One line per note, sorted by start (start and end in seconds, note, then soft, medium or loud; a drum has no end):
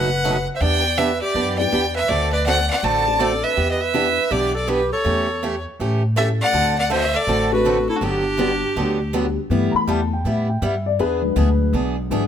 0.00 0.46 F#1 medium
0.00 0.47 B4 medium
0.00 0.47 F#5 medium
0.24 0.35 B2 medium
0.24 0.35 F#3 medium
0.24 0.36 A3 medium
0.24 0.36 D#4 medium
0.24 0.36 F#4 medium
0.56 0.63 C5 medium
0.56 0.62 E5 medium
0.60 1.20 E2 medium
0.60 0.82 E3 medium
0.60 0.83 B3 medium
0.60 0.83 D4 medium
0.60 0.83 G4 medium
0.60 1.00 D5 medium
0.60 0.99 G5 loud
0.97 1.09 E3 medium
0.97 1.09 B3 medium
0.97 1.10 D4 medium
0.97 1.10 G4 medium
0.97 1.21 B4 medium
0.97 1.21 E5 loud
1.21 1.56 G4 medium
1.21 1.56 D5 loud
1.35 1.66 F#2 medium
1.35 1.57 E3 medium
1.35 1.57 B3 medium
1.35 1.57 D4 medium
1.35 1.57 G4 medium
1.58 1.71 B3 medium
1.58 1.71 D4 medium
1.58 1.71 E4 medium
1.58 1.71 G4 medium
1.58 1.71 B4 medium
1.58 1.93 D5 medium
1.58 1.93 G5 loud
1.72 2.04 E2 medium
1.72 1.83 E3 medium
1.72 1.83 B3 medium
1.72 1.84 D4 medium
1.72 1.84 G4 medium
1.95 2.12 B4 medium
1.95 2.10 E5 medium
2.09 2.68 D2 medium
2.09 2.30 D3 medium
2.09 2.30 A3 medium
2.09 2.31 C4 medium
2.09 2.31 F#4 medium
2.09 2.32 A4 medium
2.09 2.31 A4 medium
2.09 2.32 D5 loud
2.32 2.45 B4 medium
2.32 2.45 D5 medium
2.46 2.58 D3 medium
2.46 2.58 A3 medium
2.46 2.58 C4 medium
2.46 2.58 F#4 medium
2.46 2.58 A4 medium
2.46 2.68 D5 medium
2.46 2.68 F#5 loud
2.68 2.82 D5 medium
2.68 2.85 F#5 loud
2.82 3.42 A1 medium
2.82 3.05 D3 medium
2.82 3.05 A3 medium
2.82 3.05 C4 medium
2.82 3.05 F#4 medium
2.82 3.05 A4 medium
2.82 3.22 D5 medium
2.82 3.22 A5 loud
3.06 3.55 C4 medium
3.06 3.55 D4 medium
3.06 3.55 F#4 soft
3.06 3.55 A4 medium
3.06 3.55 C5 medium
3.19 3.31 D3 medium
3.19 3.31 A3 medium
3.19 3.32 C4 medium
3.19 3.32 F#4 medium
3.19 3.45 A4 medium
3.19 3.32 A4 medium
3.19 3.45 D5 medium
3.44 3.70 B4 medium
3.44 3.70 E5 medium
3.56 4.17 E2 medium
3.56 3.78 E3 soft
3.56 3.78 B3 medium
3.56 3.79 D4 medium
3.56 3.79 G4 medium
3.71 3.82 B4 medium
3.71 3.82 D#5 medium
3.81 4.33 B4 medium
3.81 4.33 E5 medium
3.94 4.05 E3 medium
3.94 4.15 B3 medium
3.94 4.06 B3 medium
3.94 4.15 D4 medium
3.94 4.06 D4 medium
3.94 4.16 E4 medium
3.94 4.16 G4 medium
3.94 4.06 G4 medium
3.94 4.16 B4 medium
4.31 4.91 B1 medium
4.31 4.53 E3 medium
4.31 4.53 B3 medium
4.31 4.53 D4 medium
4.31 4.54 G4 medium
4.31 4.53 G4 medium
4.31 4.55 D5 loud
4.55 4.70 A4 medium
4.55 4.71 D5 medium
4.67 4.79 E3 medium
4.67 4.79 B3 medium
4.67 4.80 D4 medium
4.67 4.80 G4 medium
4.67 4.92 G4 medium
4.67 4.92 B4 medium
4.93 5.62 A4 medium
4.93 5.62 C#5 medium
5.04 5.64 E2 medium
5.04 5.26 E3 medium
5.04 5.26 A3 medium
5.04 5.27 C#4 medium
5.04 5.27 G4 medium
5.43 5.54 E3 medium
5.43 5.54 A3 medium
5.43 5.54 C#4 medium
5.43 5.55 G4 medium
5.80 6.39 A2 medium
5.80 6.01 E3 medium
5.80 6.02 A3 medium
5.80 6.02 C#4 medium
5.80 6.02 G4 medium
6.16 6.28 E3 medium
6.16 6.28 A3 medium
6.16 6.54 A3 medium
6.16 6.54 C#4 medium
6.16 6.28 C#4 medium
6.16 6.54 E4 soft
6.16 6.28 G4 medium
6.16 6.54 G4 medium
6.16 6.54 A4 medium
6.16 6.28 A4 medium
6.16 6.28 E5 loud
6.41 6.76 D5 medium
6.41 6.75 F#5 loud
6.53 7.13 D2 medium
6.53 6.75 D3 medium
6.53 6.75 A3 medium
6.53 6.75 C4 medium
6.53 6.75 F#4 medium
6.53 6.75 A4 medium
6.79 6.91 D5 medium
6.79 6.91 F#5 loud
6.90 7.02 D3 medium
6.90 7.02 A3 medium
6.90 7.02 C4 medium
6.90 7.02 F#4 medium
6.90 7.02 A4 medium
6.90 7.17 C5 medium
6.90 7.18 E5 loud
7.15 7.52 A4 medium
7.15 7.52 D5 loud
7.27 7.87 A1 medium
7.27 7.49 D3 medium
7.27 7.50 A3 medium
7.27 7.50 C4 medium
7.27 7.50 F#4 medium
7.27 7.50 A4 medium
7.51 7.99 A3 medium
7.51 8.00 C4 medium
7.51 8.00 D4 medium
7.51 8.00 F#4 medium
7.51 7.87 F#4 medium
7.51 8.00 A4 medium
7.51 7.87 B4 medium
7.65 7.76 D3 medium
7.65 7.77 A3 medium
7.65 7.77 C4 medium
7.65 7.77 F#4 medium
7.65 7.77 A4 medium
7.89 7.98 E4 medium
7.89 7.97 A4 medium
7.96 8.04 D4 medium
7.96 8.04 F#4 medium
8.01 8.61 G1 medium
8.01 8.23 D3 medium
8.01 8.23 F#3 medium
8.01 8.24 B3 medium
8.01 8.24 D4 medium
8.01 9.14 D4 medium
8.01 8.24 G4 medium
8.01 9.14 G4 medium
8.37 8.50 D3 medium
8.37 8.50 F#3 medium
8.37 8.60 G3 medium
8.37 8.50 B3 medium
8.37 8.60 B3 medium
8.37 8.51 D4 medium
8.37 8.61 D4 medium
8.37 8.61 F#4 medium
8.37 8.51 G4 medium
8.37 8.61 G4 medium
8.76 9.36 D2 medium
8.76 8.98 D3 medium
8.76 8.98 F#3 medium
8.76 8.98 B3 medium
8.76 8.98 D4 medium
8.76 8.98 G4 medium
9.13 9.25 D3 medium
9.13 9.25 F#3 medium
9.13 9.35 G3 medium
9.13 9.35 B3 medium
9.13 9.25 B3 medium
9.13 9.35 D4 medium
9.13 9.25 D4 medium
9.13 9.35 F#4 medium
9.13 9.25 G4 medium
9.13 9.35 G4 medium
9.50 9.72 G2 medium
9.50 10.08 E3 medium
9.50 9.72 G3 medium
9.50 10.08 A3 soft
9.50 10.08 B3 medium
9.50 9.72 B3 medium
9.50 9.73 E4 medium
9.50 9.73 G4 medium
9.71 9.73 A#5 medium
9.71 muted upright bass stroke soft
9.76 9.88 B5 loud
9.87 10.24 E2 medium
9.87 9.99 G3 medium
9.87 10.00 B3 medium
9.87 10.00 E4 medium
9.87 10.00 G4 medium
9.87 10.11 A5 medium
10.13 10.26 G5 medium
10.25 10.61 A2 medium
10.25 10.47 G3 medium
10.25 10.47 B3 medium
10.25 10.47 E4 medium
10.25 10.47 G4 medium
10.25 10.48 E5 medium
10.49 10.62 G5 medium
10.62 10.98 G2 medium
10.62 10.73 G3 medium
10.62 10.74 B3 medium
10.62 10.74 E4 medium
10.62 10.74 G4 medium
10.62 10.85 E5 medium
10.86 10.99 D5 medium
10.99 11.35 E2 medium
10.99 11.21 E3 medium
10.99 11.21 B3 medium
10.99 11.21 D4 medium
10.99 11.70 G#4 medium
10.99 11.21 G#4 medium
10.99 11.72 B4 medium
11.22 12.09 D3 medium
11.22 12.09 F#3 medium
11.22 12.09 G#3 medium
11.36 11.72 D2 loud
11.36 11.48 E3 medium
11.36 11.48 B3 medium
11.36 11.48 D4 medium
11.36 11.48 G#4 medium
11.73 12.09 B1 medium
11.73 11.95 E3 medium
11.73 11.95 B3 medium
11.73 11.96 D4 medium
11.73 11.96 G#4 medium
12.10 12.27 G#1 medium
12.10 12.27 D3 soft
12.10 12.22 E3 medium
12.10 12.27 F#3 soft
12.10 12.27 G#3 medium
12.10 12.22 B3 medium
12.10 12.23 D4 medium
12.10 12.23 G#4 medium